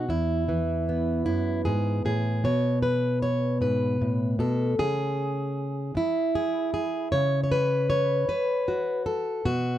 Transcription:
0.09 1.26 E2 medium
0.09 1.25 E4 medium
0.49 2.44 E3 medium
0.89 2.40 B3 soft
1.26 1.66 F#2 medium
1.26 1.65 E4 medium
1.65 2.04 G#2 medium
1.65 2.05 G#4 medium
2.05 2.44 A2 medium
2.05 2.44 G#4 medium
2.44 4.38 B2 medium
2.44 2.82 C#5 medium
2.83 3.22 B4 medium
3.22 3.61 C#5 medium
3.61 4.00 G#2 medium
3.61 4.40 B4 medium
4.01 4.40 A2 medium
4.39 4.78 B2 medium
4.39 4.79 A4 medium
4.79 5.95 C#3 medium
4.79 6.34 G#4 medium
5.95 7.12 E4 medium
5.95 muted steel-string acoustic guitar stroke medium
6.35 6.73 G#4 medium
6.74 7.12 G#4 medium
7.12 8.27 C#3 medium
7.12 7.42 C#5 loud
7.44 7.88 C#5 medium
7.52 8.28 B4 medium
7.90 9.06 C#5 medium
8.28 9.06 B4 loud
8.28 muted steel-string acoustic guitar stroke medium
8.68 9.40 F#4 soft
9.06 9.45 A4 medium
9.45 9.78 B2 medium
9.45 9.78 F#4 medium

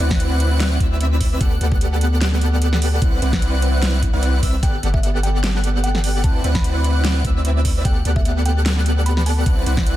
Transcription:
0.00 0.78 D2 loud
0.00 0.78 C4 medium
0.00 0.78 E4 medium
0.00 0.78 B4 medium
0.00 0.78 D5 medium
0.00 0.78 F#5 loud
0.00 0.78 F#6 medium
0.11 kick loud
0.11 snare medium
0.20 closed hi-hat medium
0.40 closed hi-hat medium
0.60 snare loud
0.60 closed hi-hat medium
0.80 1.39 D2 loud
0.80 1.39 C4 medium
0.80 1.39 E4 medium
0.80 1.39 B4 medium
0.80 1.39 D5 medium
0.80 1.39 E5 medium
0.80 1.39 E6 medium
0.80 kick medium
0.80 closed hi-hat medium
1.01 closed hi-hat medium
1.21 kick medium
1.21 open hi-hat medium
1.41 1.59 D2 loud
1.41 1.53 B3 loud
1.41 1.53 G4 medium
1.41 1.53 A4 medium
1.41 1.53 F#5 loud
1.41 1.53 F#6 loud
1.41 kick loud
1.41 closed hi-hat medium
1.61 3.00 D2 loud
1.61 3.00 B3 medium
1.61 3.00 G4 medium
1.61 3.00 A4 medium
1.61 3.00 D5 medium
1.61 3.00 F#5 loud
1.61 3.00 F#6 loud
1.61 closed hi-hat medium
1.72 kick loud
1.81 closed hi-hat medium
2.01 closed hi-hat medium
2.21 snare loud
2.21 closed hi-hat medium
2.32 snare soft
2.41 closed hi-hat medium
2.62 closed hi-hat medium
2.73 snare medium
2.82 open hi-hat loud
3.02 3.20 C2 medium
3.02 3.20 C4 medium
3.02 3.20 E4 medium
3.02 3.20 B4 medium
3.02 3.20 D5 medium
3.02 3.20 F#5 medium
3.02 3.20 F#6 medium
3.02 kick loud
3.02 closed hi-hat medium
3.22 4.11 C2 loud
3.22 4.00 C4 medium
3.22 4.00 E4 medium
3.22 4.00 B4 medium
3.22 4.00 D5 medium
3.22 4.00 F#5 medium
3.22 4.00 F#6 medium
3.22 closed hi-hat medium
3.33 kick loud
3.33 snare soft
3.33 snare medium
3.42 closed hi-hat medium
3.62 closed hi-hat medium
3.82 snare loud
3.82 closed hi-hat medium
4.02 kick medium
4.02 closed hi-hat medium
4.13 4.41 C2 loud
4.13 4.41 C4 medium
4.13 4.40 E4 medium
4.13 4.40 B4 medium
4.13 4.40 D5 medium
4.13 4.41 F#5 loud
4.13 4.41 F#6 medium
4.23 closed hi-hat medium
4.43 4.64 C2 loud
4.43 4.55 C4 medium
4.43 4.55 E4 medium
4.43 4.55 B4 medium
4.43 4.55 D5 medium
4.43 4.55 E5 loud
4.43 4.55 E6 loud
4.43 kick medium
4.43 open hi-hat loud
4.63 4.81 G1 loud
4.63 4.75 B3 medium
4.63 4.75 G4 medium
4.63 4.75 A4 medium
4.63 4.75 D5 medium
4.63 4.75 F#5 loud
4.63 4.79 G5 medium
4.63 4.76 F#6 loud
4.63 kick loud
4.63 closed hi-hat medium
4.83 6.25 G1 loud
4.83 6.22 B3 medium
4.83 6.22 G4 medium
4.83 6.22 A4 medium
4.83 6.22 D5 medium
4.83 6.22 F#5 loud
4.83 6.22 F#6 loud
4.83 closed hi-hat medium
4.94 5.00 E5 medium
4.94 kick loud
5.03 5.10 E5 medium
5.03 closed hi-hat medium
5.23 5.39 G5 loud
5.23 closed hi-hat medium
5.44 snare loud
5.44 closed hi-hat medium
5.55 snare soft
5.64 closed hi-hat medium
5.84 6.22 G5 loud
5.84 closed hi-hat medium
5.95 snare medium
6.04 open hi-hat loud
6.24 6.42 D2 loud
6.24 6.42 E4 medium
6.24 6.31 A5 medium
6.24 6.42 F#6 medium
6.24 kick loud
6.24 closed hi-hat medium
6.35 6.41 A5 medium
6.44 7.23 D2 loud
6.44 7.22 C4 medium
6.44 7.22 E4 medium
6.44 7.22 B4 medium
6.44 7.22 D5 medium
6.44 7.22 F#5 loud
6.44 7.22 F#6 medium
6.44 closed hi-hat medium
6.55 6.95 B5 loud
6.55 kick loud
6.55 snare medium
6.64 closed hi-hat medium
6.84 closed hi-hat medium
7.04 snare loud
7.04 closed hi-hat medium
7.25 7.83 D2 loud
7.25 7.83 C4 medium
7.25 7.83 E4 medium
7.25 7.83 B4 medium
7.25 7.83 D5 medium
7.25 7.83 E5 medium
7.25 7.83 E6 medium
7.25 kick medium
7.25 closed hi-hat medium
7.45 closed hi-hat medium
7.65 kick medium
7.65 open hi-hat loud
7.85 8.03 D2 medium
7.85 7.98 B3 medium
7.85 7.98 G4 medium
7.85 7.98 A4 medium
7.85 7.98 F#5 loud
7.85 8.01 G5 medium
7.85 7.98 F#6 loud
7.85 kick loud
7.85 closed hi-hat medium
8.05 9.44 D2 loud
8.05 9.44 B3 medium
8.05 9.44 G4 medium
8.05 9.44 A4 medium
8.05 9.44 D5 medium
8.05 9.44 F#5 loud
8.05 9.44 F#6 loud
8.05 closed hi-hat medium
8.16 8.22 E5 medium
8.16 kick loud
8.25 8.32 E5 medium
8.25 closed hi-hat medium
8.46 8.61 G5 loud
8.46 closed hi-hat medium
8.66 snare loud
8.66 closed hi-hat medium
8.77 snare soft
8.86 closed hi-hat medium
9.06 9.13 B5 medium
9.06 closed hi-hat medium
9.17 9.23 B5 medium
9.17 snare medium
9.26 9.51 A5 medium
9.26 open hi-hat medium
9.46 9.64 C2 medium
9.46 9.64 C4 medium
9.46 9.64 E4 medium
9.46 9.64 B4 medium
9.46 9.64 F#6 medium
9.46 kick loud
9.46 closed hi-hat medium
9.66 9.96 C2 loud
9.66 9.96 C4 medium
9.66 9.96 E4 medium
9.66 9.96 B4 medium
9.66 9.96 D5 medium
9.66 9.96 F#5 medium
9.66 9.96 F#6 medium
9.66 closed hi-hat medium
9.77 kick loud
9.77 snare medium
9.87 closed hi-hat medium

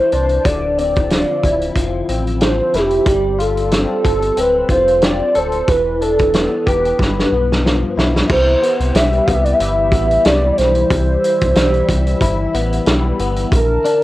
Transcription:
0.00 1.11 E3 medium
0.00 0.12 D4 medium
0.00 0.13 C5 loud
0.12 0.39 C2 medium
0.12 0.81 D4 medium
0.12 0.43 C5 loud
0.12 closed hi-hat medium
0.29 closed hi-hat soft
0.45 1.24 D1 loud
0.45 3.75 D3 medium
0.45 0.76 D5 loud
0.45 kick loud
0.45 closed hi-hat medium
0.78 2.09 C4 medium
0.78 1.72 D5 loud
0.78 closed hi-hat medium
0.96 kick medium
0.96 closed hi-hat soft
1.10 1.77 F3 medium
1.10 snare medium
1.10 closed hi-hat medium
1.44 1.70 D1 loud
1.44 2.73 E4 medium
1.44 kick medium
1.44 closed hi-hat medium
1.61 closed hi-hat medium
1.76 2.02 F1 loud
1.76 2.42 F3 medium
1.76 kick medium
1.76 closed hi-hat medium
2.09 2.61 A1 medium
2.09 3.72 C4 medium
2.09 closed hi-hat medium
2.27 closed hi-hat soft
2.41 3.06 F3 medium
2.41 2.76 C5 medium
2.41 snare loud
2.41 closed hi-hat medium
2.74 3.00 F1 medium
2.74 3.14 E4 medium
2.74 3.42 G4 medium
2.74 snare soft
2.74 closed hi-hat medium
2.91 closed hi-hat soft
3.06 3.86 G1 loud
3.06 5.68 G3 medium
3.06 kick loud
3.06 closed hi-hat medium
3.39 4.69 F4 medium
3.39 4.41 A4 loud
3.39 closed hi-hat medium
3.57 closed hi-hat soft
3.71 4.36 C4 medium
3.71 snare medium
3.71 closed hi-hat medium
4.05 4.31 G1 medium
4.05 5.34 A4 medium
4.05 kick medium
4.05 closed hi-hat medium
4.22 closed hi-hat medium
4.37 4.63 D1 loud
4.37 5.02 C4 medium
4.37 4.73 B4 medium
4.37 closed hi-hat medium
4.69 5.22 F1 medium
4.69 5.75 F4 medium
4.69 5.03 C5 loud
4.69 kick medium
4.69 closed hi-hat medium
4.88 closed hi-hat soft
5.02 5.75 C4 medium
5.02 5.39 D5 loud
5.02 snare loud
5.02 closed hi-hat medium
5.35 5.62 D1 medium
5.35 5.75 A4 medium
5.35 5.71 C5 loud
5.35 closed hi-hat medium
5.52 closed hi-hat soft
5.68 6.47 E1 loud
5.68 7.64 E3 medium
5.68 6.03 B4 loud
5.68 kick loud
5.68 closed hi-hat medium
6.01 7.06 D4 medium
6.01 6.33 A4 medium
6.01 closed hi-hat medium
6.19 kick medium
6.19 closed hi-hat soft
6.33 7.32 B3 medium
6.33 6.69 A4 medium
6.33 snare medium
6.33 closed hi-hat medium
6.66 6.92 E1 loud
6.66 7.67 G4 medium
6.66 7.97 B4 medium
6.66 kick medium
6.66 closed hi-hat medium
6.85 closed hi-hat soft
6.99 7.25 G1 loud
6.99 8.37 G2 medium
6.99 kick medium
6.99 snare medium
7.19 snare soft
7.32 7.84 B1 medium
7.32 8.62 B3 medium
7.52 snare medium
7.64 8.37 F3 medium
7.64 snare medium
7.97 8.23 B1 medium
7.97 9.60 E4 medium
7.97 snare medium
8.16 snare medium
8.29 8.56 C2 loud
8.29 13.47 E3 medium
8.29 13.47 E4 medium
8.29 10.88 G4 medium
8.29 8.97 C5 loud
8.29 kick loud
8.29 crash loud
8.62 9.26 B3 medium
8.62 closed hi-hat medium
8.80 8.91 C2 loud
8.80 closed hi-hat medium
8.94 9.20 B1 loud
8.94 10.25 G3 medium
8.94 9.27 E5 loud
8.94 snare medium
8.94 closed hi-hat medium
9.13 closed hi-hat soft
9.26 9.54 C2 medium
9.26 9.92 B3 medium
9.26 9.35 F5 medium
9.26 kick medium
9.26 closed hi-hat medium
9.33 9.46 E5 medium
9.44 9.55 D5 medium
9.44 closed hi-hat medium
9.53 9.60 E5 medium
9.60 9.93 G1 loud
9.60 12.20 E4 medium
9.60 10.27 E5 loud
9.60 closed hi-hat medium
9.92 10.18 A1 medium
9.92 10.58 B3 medium
9.92 kick medium
9.92 closed hi-hat medium
10.11 closed hi-hat soft
10.25 10.51 C2 loud
10.25 11.55 G3 medium
10.25 10.51 D5 medium
10.25 snare loud
10.25 closed hi-hat medium
10.53 10.59 D5 medium
10.57 10.84 B1 medium
10.57 12.53 C5 loud
10.57 snare soft
10.57 closed hi-hat medium
10.75 closed hi-hat soft
10.90 11.17 C2 loud
10.90 13.49 E5 medium
10.90 kick loud
10.90 closed hi-hat loud
11.24 closed hi-hat medium
11.41 11.53 C2 medium
11.41 kick medium
11.41 closed hi-hat medium
11.55 11.82 B1 medium
11.55 12.87 G3 medium
11.55 snare medium
11.55 closed hi-hat medium
11.74 closed hi-hat soft
11.89 12.15 C2 loud
11.89 kick medium
11.89 closed hi-hat medium
12.07 closed hi-hat medium
12.21 12.47 G1 loud
12.21 13.59 E4 medium
12.21 kick medium
12.21 closed hi-hat loud
12.54 12.80 A1 medium
12.54 13.19 B3 medium
12.54 closed hi-hat medium
12.72 closed hi-hat medium
12.86 13.12 B1 medium
12.86 13.59 G3 medium
12.86 snare loud
12.86 closed hi-hat medium
13.19 13.45 G1 medium
13.19 13.59 B3 medium
13.19 closed hi-hat medium
13.36 closed hi-hat soft
13.52 13.78 A#1 loud
13.52 14.04 D3 medium
13.52 14.04 D4 medium
13.52 14.04 A#4 loud
13.52 14.04 A5 medium
13.52 kick loud
13.52 closed hi-hat medium
13.85 14.04 D4 medium
13.85 closed hi-hat medium

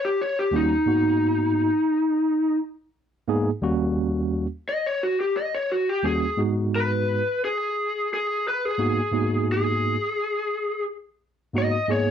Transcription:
0.05 0.19 G4 medium
0.21 0.37 C#5 medium
0.39 0.54 G4 medium
0.52 0.73 D#2 medium
0.52 0.73 G3 medium
0.52 0.74 A#3 medium
0.52 0.74 C#4 medium
0.52 0.74 F#4 medium
0.56 2.57 D#4 medium
0.86 1.69 G#2 medium
0.86 1.70 A#3 medium
0.86 1.70 B3 medium
0.86 1.70 D#4 medium
0.86 1.70 F#4 medium
3.27 3.49 G#2 medium
3.27 3.49 A#3 medium
3.27 3.49 B3 medium
3.27 3.49 D#4 medium
3.27 3.50 G#4 medium
3.62 4.45 D#2 medium
3.62 4.45 G3 medium
3.62 4.46 A#3 medium
3.62 4.46 C#4 medium
3.62 4.46 F#4 loud
4.69 4.84 D#5 medium
4.86 5.01 C#5 medium
5.03 5.19 F#4 medium
5.20 5.36 G4 medium
5.37 5.53 D#5 medium
5.55 5.70 C#5 medium
5.72 5.89 F#4 medium
5.89 6.04 G4 medium
6.03 6.24 D#2 medium
6.03 6.25 G3 medium
6.03 6.25 A#3 medium
6.03 6.25 C#4 medium
6.03 6.25 F#4 medium
6.03 6.38 G#4 medium
6.37 7.20 G#2 medium
6.37 7.21 G#3 medium
6.37 7.21 B3 medium
6.37 7.21 D#4 medium
6.37 7.21 F#4 medium
6.75 7.41 B4 medium
7.45 8.10 G#4 medium
8.14 8.45 G#4 medium
8.48 8.65 B4 medium
8.65 9.47 G#4 medium
8.78 8.99 G#2 medium
8.78 9.00 A#3 medium
8.78 9.00 B3 medium
8.78 9.00 D#4 medium
8.78 9.00 F#4 medium
9.12 9.95 G#2 medium
9.12 9.96 A#3 medium
9.12 9.96 B3 medium
9.12 9.96 D#4 medium
9.12 9.96 F#4 medium
9.52 10.84 G#4 medium
11.53 11.75 G#2 medium
11.53 11.75 A#3 medium
11.53 11.75 B3 medium
11.53 11.76 D#4 medium
11.53 11.76 F#4 medium
11.58 11.90 D#5 medium
11.88 12.11 G#2 medium
11.88 12.11 A#3 medium
11.88 12.11 B3 medium
11.88 12.11 D#4 medium
11.88 12.11 G#4 medium
11.92 12.11 C#5 medium

